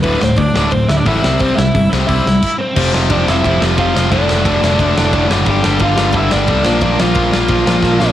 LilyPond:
<<
  \new Staff \with { instrumentName = "Lead electric guitar" } { \time 4/4 \key c \major \tempo 4 = 177 <b b'>8 <c' c''>8 <d' d''>4 <c' c''>8 <e' e''>16 <d' d''>16 <e' e''>4 | <c' c''>8 <e' e''>4 r8 <e' e''>4. <c' c''>8~ | \key f \major <c' c''>8 r8 <d' d''>8 <e' e''>4 r8 <f' f''>4 | <d' d''>2.~ <d' d''>8 r8 |
<g' g''>4 <f' f''>4 <e' e''>8 <d' d''>4. | <d' d''>8 <f' f''>2. <c' c''>8 | }
  \new Staff \with { instrumentName = "Overdriven electric guitar" } { \clef bass \time 4/4 \key c \major r1 | r1 | \key f \major <f, c f>8 <f, c f>8 <f, c f>8 <f, c f>8 <f, c f>8 <f, c f>8 <f, c f>8 <f, c f>8 | <d, a, d>8 <d, a, d>8 <d, a, d>8 <d, a, d>8 <d, a, d>8 <d, a, d>8 <d, a, d>8 <d, a, d>8 |
<g, d g>8 <g, d g>8 <g, d g>8 <g, d g>8 <g, d g>8 <g, d g>8 <g, d g>8 <bes, f bes>8 | <bes, f bes>8 <bes, f bes>8 <bes, f bes>8 <bes, f bes>8 <bes, f bes>8 <bes, f bes>8 <bes, f bes>8 <bes, f bes>8 | }
  \new Staff \with { instrumentName = "Distorted electric guitar" } { \clef bass \time 4/4 \key c \major <d, a, d>8 <d, a,>8 <d, a,>8 <d, a, d>8 <d, a,>8 <d, a,>8 <d, a, d>8 <c g c'>8 | <c g c'>8 <c g>8 <c g>8 <c g c'>8 <c g c'>8 <c g>8 r4 | \key f \major <f, c f>8 <f, c f>8 <f, c f>8 <f, c f>8 <f, c f>8 <f, c f>8 <f, c f>8 <f, c f>8 | <d, a, d>8 <d, a, d>8 <d, a, d>8 <d, a, d>8 <d, a, d>8 <d, a, d>8 <d, a, d>8 <d, a, d>8 |
<g, d g>8 <g, d g>8 <g, d g>8 <g, d g>8 <g, d g>8 <g, d g>8 <g, d g>8 <bes, f bes>8 | <bes, f bes>8 <bes, f bes>8 <bes, f bes>8 <bes, f bes>8 <bes, f bes>8 <bes, f bes>8 <bes, f bes>8 <bes, f bes>8 | }
  \new Staff \with { instrumentName = "Distorted electric guitar" } { \clef bass \time 4/4 \key c \major <d, a, d>8 <d, a,>8 <d, a,>8 <d, a, d>8 <d, a,>8 <d, a,>8 <d, a, d>8 <c g c'>8 | <c g c'>8 <c g>8 <c g>8 <c g c'>8 <c g c'>8 <c g>8 r4 | \key f \major <f, c f>8 <f, c f>8 <f, c f>8 <f, c f>8 <f, c f>8 <f, c f>8 <f, c f>8 <f, c f>8 | <d, a, d>8 <d, a, d>8 <d, a, d>8 <d, a, d>8 <d, a, d>8 <d, a, d>8 <d, a, d>8 <d, a, d>8 |
<g, d g>8 <g, d g>8 <g, d g>8 <g, d g>8 <g, d g>8 <g, d g>8 <g, d g>8 <bes, f bes>8 | <bes, f bes>8 <bes, f bes>8 <bes, f bes>8 <bes, f bes>8 <bes, f bes>8 <bes, f bes>8 <bes, f bes>8 <bes, f bes>8 | }
  \new Staff \with { instrumentName = "Picked electric bass" } { \clef bass \time 4/4 \key c \major d,,8 d,,8 d,8 d,,8 d,,8 d,8 a,,8 c,8 | c,8 c,8 g,,8 c,8 c,8 c,8 r4 | \key f \major f,,8 f,,8 f,,8 f,,8 f,,8 f,,8 f,,8 f,,8 | f,,8 f,,8 f,,8 f,,8 f,,8 f,,8 f,,8 fis,,8 |
g,,8 g,,8 g,,8 g,,8 g,,8 g,,8 c,8 bes,,8 | bes,,8 bes,,8 bes,,8 bes,,8 bes,,8 bes,,8 bes,,8 bes,,8 | }
  \new DrumStaff \with { instrumentName = "Drums" } \drummode { \time 4/4 <hho bd>8 sn8 <hho bd>8 sn8 <hho bd>8 sn8 <hho bd>8 sn8 | <hho bd>8 sn8 <hho bd>8 sn8 <hho bd>8 sn8 <cymc bd>4 | <cymc bd>8 sn8 <bd cymr>8 sn8 <bd cymr>8 sn8 <bd cymr>8 sn8 | <bd cymr>8 sn8 <bd cymr>8 sn8 <bd cymr>8 sn8 <bd cymr>8 sn8 |
<bd cymr>8 sn8 <bd cymr>8 sn8 <bd cymr>8 sn8 <bd cymr>8 sn8 | <bd cymr>8 sn8 <bd cymr>8 sn8 <bd cymr>8 sn8 <bd sn>8 sn8 | }
>>